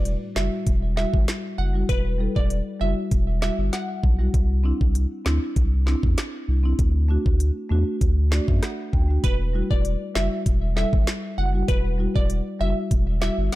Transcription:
Already playing: E1
0.05 closed hi-hat
0.35 F#1 G3 E4 F#4 E5, snare
0.67 E1, kick, closed hi-hat
0.96 G3 E4 F#4 E5, snare
1.14 G1, kick
1.28 snare, closed hi-hat
1.57 F#1 E4 F#4 F#5
1.74 G3 E4 F#4
1.89 E1 B4, kick, closed hi-hat
2.19 G3 E4 A4
2.36 E1 D5, kick
2.50 closed hi-hat
2.80 F#1 G3 E4 F#4 E5
3.11 E1, kick, closed hi-hat
3.41 G3 E4 F#4 E5, snare
3.58 G1
3.73 F#5, snare, closed hi-hat
4.02 B1 E4 F#4, kick
4.18 G3 E4 F#4
4.34 C2, kick, closed hi-hat
4.64 C4 D4 E4
4.81 C2, kick
4.95 closed hi-hat
5.25 D2 C4 D4 E4, snare
5.56 C2, kick, closed hi-hat
5.86 C4 D4 E4, snare
6.03 E2, kick
6.18 snare, closed hi-hat
6.47 C2 D4 E4
6.63 C4 D4 E4
6.79 D2, kick, closed hi-hat
7.09 A3 D4 F#4
7.26 D2, kick
7.40 closed hi-hat
7.70 E2 A3 D4 F#4
8.01 D2, kick, closed hi-hat
8.31 A3 D4 F#4 D5, snare
8.48 F#2 E5, kick
8.62 F#5, cross-stick, snare, closed hi-hat
8.92 D2 D4 F#4 G5, kick
9.08 A3 D4 F#4
9.24 E1 B4, kick, closed hi-hat
9.53 G3 E4 F#4
9.71 E1 D5, kick
9.85 closed hi-hat
10.15 F#1 G3 E4 F#4 E5, snare
10.46 E1, kick, closed hi-hat
10.76 G3 E4 A4 E5, snare
10.93 G1, kick
11.07 snare, closed hi-hat
11.37 F#1 E4 F#4 F#5
11.53 G3 E4 F#4
11.68 E1 B4, kick, closed hi-hat
11.98 G3 E4 F#4
12.15 E1 D5, kick
12.30 closed hi-hat
12.59 F#1 G3 E4 F#4 E5
12.91 E1, kick, closed hi-hat
13.21 G3 E4 F#4 E5, snare
13.38 G1

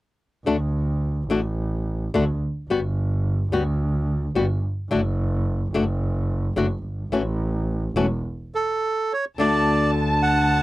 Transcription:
0.46 D2 D3 A3 D4 F#4
1.30 A1 D3 A3 D4 F#4
2.14 D2 D3 A3 D4 F#4
2.69 G1 G3 B3 F#4
3.52 D2 G3 B3 F#4
4.35 G1 G3 B3 F#4
4.90 F#1 D3 A3 D4 F#4
5.73 F#1 D3 A3 D4 F#4
6.56 F#1 D3 A3 D4 F#4
6.83 G1
7.12 A1 E3 A3 C#4 F#4
7.96 E1 E3 A3 C#4 F#4
8.55 A4
9.13 C#5
9.38 D2 D3 A3 D4 F#4 D5 A5
10.22 F#5

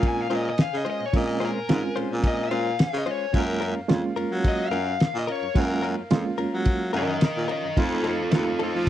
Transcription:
Already playing: A#2 G#3 C4 C#4 F4 A#4 C5 G#5
0.03 kick, ride
0.08 G#5
0.22 F5
0.30 A#2 G#3 C#4 F4 C5, ride
0.36 D#5
0.50 D#5
0.58 F5, snare, ride
0.73 C#3
0.77 D#5
0.85 G#3 C#4 F4 C5, ride
0.91 D#5
1.01 A#2
1.06 C#5
1.13 A#2 G#3 C4 C#4 F4, kick, ride
1.18 D#5
1.40 G#3 C#4 F4 C5, ride
1.45 A#4
1.56 A#2
1.68 G#2 G#3 C4 C#4 F4, snare, ride
1.96 A#2 G#3 C#4 F4 C5, ride
2.11 A#2
2.24 D#5, kick, ride
2.44 F5
2.51 A#2 G#3 C#4 F4 C5, ride
2.79 snare, ride
2.94 C#3
2.98 D#5
3.06 G#3 C#4 F4 C5, ride
3.11 C#5
3.33 F#2 G#3 A#3 C#4 F4 A#4 F5, kick, ride
3.39 A#4
3.61 C#4 F4 A#4, ride
3.77 F#2
3.88 F2 G#3 A#3 C#4 F4, snare, ride
4.16 F#2 C#4 F4 A#4, ride
4.31 F#3
4.44 D#5, kick, ride
4.63 F5
4.70 F#2 C#4 F4 A#4, ride
5.00 snare, ride
5.15 A#2
5.19 D#5
5.27 C#4 F4 A#4, ride
5.31 C#5
5.42 F#2
5.54 F#2 G#3 A#3 C#4 F4 F5, kick, ride
5.60 A#4
5.82 C#4 F4 A#4, ride
5.98 F#2
6.10 F2 G#3 A#3 C#4 F4, snare, ride
6.38 F#2 C#4 F4 A#4, ride
6.54 F#3
6.65 kick, ride
6.93 F#2 C#4 F4 A#4, ride
6.98 D#5
7.21 A#4, snare, ride
7.25 D#5
7.37 A#2
7.48 C#4 F4 A#4, ride
7.52 D#5
7.65 F#2
7.76 F2 A3 C4 D#4 F4 A4 D#5 F5, kick, ride
8.04 C4 D#4 F4 A4, ride
8.20 F2
8.31 D#2 A3 C4 D#4 F4, snare, ride
8.36 A4
8.59 F2 C4 D#4 A4, ride
8.64 F4
8.75 F3

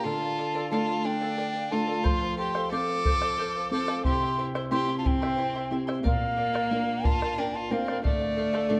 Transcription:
0.04 D3 F4 A4 D5 F5 A5
0.21 D5 F5
0.37 A4 D5 F5
0.54 A4 D5 F5
0.71 A3 D4 F4 A4 D5 F5 A5
0.87 D5 F5
1.04 D4 A4 D5 F5 G5
1.21 A4 D5 F5
1.37 A4 D5 F5
1.54 D5 F5
1.71 A3 D4 F4 A4 D5 F5 A5
1.87 A4 D5 F5
2.03 F3 F4 A4 C5 F5 C6, bombo low
2.20 C5 F5
2.37 G4 A4 C5 F5 C6
2.54 A4 C5 F5, bombo rim
2.71 C4 F4 A4 C5 F5 D6, bombo rim
2.88 C5 F5
3.05 A4 C5 F5, bombo low
3.21 A4 C5 F5, bombo rim
3.38 A4 C5 F5
3.56 C5 F5
3.71 C4 F4 A4 C5 F5 D6
3.88 A4 C5 F5, bombo rim
4.05 C3 E4 G4 C5 E5 C6, bombo low
4.21 E4 E5 C6
4.38 E4 C5 E5 C6
4.55 E4 G4 C5 E5 C6, bombo rim
4.71 C4 E4 G4 C5 E5 C6, bombo rim
4.89 E4 E5 C6
4.99 F4 A5
5.04 C4 E4 C5 E5 G5 C6, bombo low
5.22 E4 G4 C5 E5 C6, bombo rim
5.37 E4 C5 E5 C6
5.55 E4 E5 C6
5.71 C4 E4 G4 C5 E5 C6
5.87 E4 G4 C5 E5 C6, bombo rim
6.03 A#2 A#3 A#4 D5 F5, bombo low
6.20 D5 F5
6.36 A#4 D5 F5
6.53 A#4 D5 F5, bombo rim
6.70 A#3 D4 F4 A#4 D5 F5, bombo rim
6.87 D5 F5
7.03 F4 A#4 D5 F5 A5, bombo low
7.21 A#4 D5 F5, bombo rim
7.37 D4 A#4 D5 F5 G5
7.54 F4 D5 F5 A5
7.70 A#3 C4 D4 F4 A#4 D5 F5
7.87 A#4 D5 F5, bombo rim
8.03 D3 A3 A4 D5 F5, bombo low
8.19 D5 F5, bombo rim
8.37 A4 D5 F5, bombo rim
8.53 A4 D5 F5, bombo rim
8.69 A3 D4 F4 A4 D5 F5

